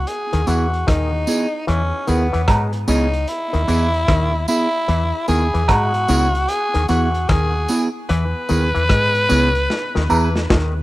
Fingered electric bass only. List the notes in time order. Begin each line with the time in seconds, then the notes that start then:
0.34 D#2
0.48 E2
0.88 D#2
1.69 E2
2.09 D#2
2.34 E2
2.49 G#2
2.89 C#2
3.54 D#2
3.69 E2
4.09 D#2
4.89 E2
5.29 D#2
5.55 E2
5.70 G#2
6.09 C#2
6.75 D#2
6.90 E2
7.30 D#2
8.10 E2
8.51 D#2
8.76 E2
8.91 G#2
9.31 C#2
9.97 D#2
10.11 E2
10.51 D#2